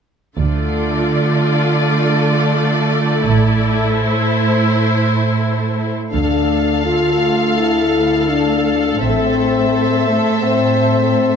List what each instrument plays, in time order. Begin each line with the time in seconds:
0.38 double bass section D2, cello section D3, viola section A3 F4, violin section A4 D5
3.25 double bass section A1, cello section A2, viola section E4
3.98 violin section C5
6.12 double bass section D2, cello section D2, french horn section D4, viola section A4, violin section A4 F5
6.85 french horn section F4
7.57 french horn section E4
8.29 french horn section D4
9.01 double bass section A1, cello section A2, french horn section C4, violin section C5 E5
10.08 french horn section A3
10.43 french horn section C4